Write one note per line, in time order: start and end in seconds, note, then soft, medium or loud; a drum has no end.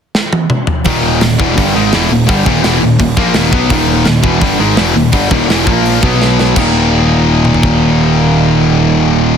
0.15 snare medium
0.33 high tom medium
0.50 mid tom medium
0.67 floor tom loud
0.84 1.19 D#1 loud
0.84 1.20 D#2 medium
0.84 1.20 A#2 loud
0.84 1.21 D#3 loud
0.84 kick loud
0.84 open hi-hat medium
1.21 1.38 D#1 medium
1.21 1.35 D#2 medium
1.21 1.35 A#2 medium
1.21 snare loud
1.21 open hi-hat medium
1.39 1.56 E1 loud
1.39 1.56 E2 medium
1.39 1.56 B2 medium
1.39 1.57 E3 medium
1.39 kick loud
1.57 1.74 G1 medium
1.57 1.74 G2 loud
1.57 1.73 D3 medium
1.57 1.74 G3 loud
1.57 kick loud
1.57 open hi-hat medium
1.74 1.92 G#1 medium
1.74 1.92 G#2 medium
1.74 1.92 D#3 loud
1.74 1.93 G#3 loud
1.92 2.10 E1 loud
1.92 2.10 E2 loud
1.92 2.11 B2 loud
1.92 2.11 E3 loud
1.92 snare loud
1.92 open hi-hat medium
2.11 2.28 D#1 medium
2.11 2.25 D#2 medium
2.11 2.25 A#2 medium
2.27 2.45 G1 medium
2.27 2.45 G2 loud
2.27 2.45 D3 loud
2.27 2.46 G3 loud
2.27 kick loud
2.27 open hi-hat medium
2.45 2.63 D#1 loud
2.45 2.63 D#2 medium
2.45 2.63 A#2 loud
2.45 2.64 D#3 medium
2.45 kick loud
2.63 2.81 E1 loud
2.63 2.81 E2 loud
2.63 2.81 B2 loud
2.63 2.81 E3 loud
2.63 snare loud
2.63 open hi-hat medium
2.82 2.99 D#1 medium
2.82 2.96 D#2 medium
2.82 2.96 A#2 medium
3.00 3.16 D#1 medium
3.00 3.14 D#2 medium
3.00 3.14 A#2 medium
3.00 kick medium
3.00 open hi-hat medium
3.17 3.34 A#1 loud
3.17 3.35 A#2 medium
3.17 3.35 F3 medium
3.17 3.36 A#3 loud
3.17 kick loud
3.34 3.52 D#1 loud
3.34 3.53 D#2 medium
3.34 3.53 A#2 medium
3.34 3.53 D#3 loud
3.34 snare loud
3.34 open hi-hat medium
3.53 3.70 B1 medium
3.53 3.70 B2 loud
3.53 3.71 F#3 loud
3.53 3.71 B3 loud
3.53 kick loud
3.70 4.04 D#1 loud
3.70 4.04 D#2 loud
3.70 4.05 A#2 loud
3.70 4.06 D#3 loud
3.70 kick loud
3.70 open hi-hat medium
4.05 4.23 D#1 medium
4.05 4.20 D#2 medium
4.05 4.21 A#2 medium
4.05 snare medium
4.05 open hi-hat soft
4.22 4.41 E1 medium
4.22 4.40 E2 medium
4.22 4.41 B2 medium
4.22 4.41 E3 medium
4.22 kick loud
4.40 4.58 G1 loud
4.40 4.58 G2 loud
4.40 4.58 D3 loud
4.40 4.59 G3 loud
4.40 kick loud
4.40 open hi-hat medium
4.58 4.76 G#1 medium
4.58 4.76 G#2 loud
4.58 4.77 D#3 loud
4.58 4.77 G#3 loud
4.77 4.95 E1 medium
4.77 4.94 E2 medium
4.77 4.95 B2 loud
4.77 4.96 E3 loud
4.77 snare loud
4.77 open hi-hat medium
4.94 5.12 D#1 medium
4.94 5.09 D#2 medium
4.94 5.10 A#2 medium
5.12 5.30 G1 loud
5.12 5.30 G2 loud
5.12 5.31 D3 loud
5.12 5.31 G3 loud
5.12 kick loud
5.12 open hi-hat medium
5.30 5.48 D#1 medium
5.30 5.48 D#2 loud
5.30 5.49 A#2 loud
5.30 5.49 D#3 loud
5.30 kick loud
5.48 5.66 E1 loud
5.48 5.66 E2 loud
5.48 5.65 B2 loud
5.48 5.65 E3 loud
5.48 snare medium
5.48 open hi-hat medium
5.65 6.00 A#1 medium
5.65 6.00 A#2 medium
5.65 6.01 F3 medium
5.65 6.01 A#3 medium
5.65 kick loud
5.86 open hi-hat medium
6.00 6.53 B1 medium
6.00 6.55 B2 loud
6.00 6.55 F#3 loud
6.00 6.55 B3 medium
6.00 kick loud
6.22 snare medium
6.39 snare medium
6.54 9.37 D#1 loud
6.54 9.37 D#2 loud
6.54 9.37 A#2 loud
6.54 9.37 D#3 loud
6.54 9.37 G3 loud
6.54 9.37 A#3 loud
6.54 9.37 D#4 loud
6.54 kick loud
6.54 crash medium
7.45 mid tom medium
7.54 floor tom medium
7.63 kick medium